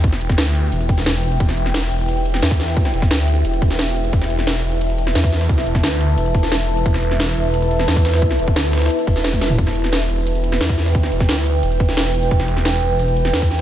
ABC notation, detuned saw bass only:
X:1
M:4/4
L:1/8
Q:1/4=176
K:Em
V:1 name="Detuned saw bass" clef=bass
E,, E,,, D,,2 E,,,4 | E,,,3 E,,,3 E,,2- | E,, E,,, D,,2 E,,,4 | E,,,3 E,,,3 E,,2- |
E,, E,,, D,,2 E,,,4 | E,,,3 E,,,3 E,,2- | E,, E,,, D,,2 z E,,,3 | E,,,3 E,,,3 E,,2- |
E,, E,,, D,,2 E,,,4 | E,,,3 E,,,3 E,,2 |]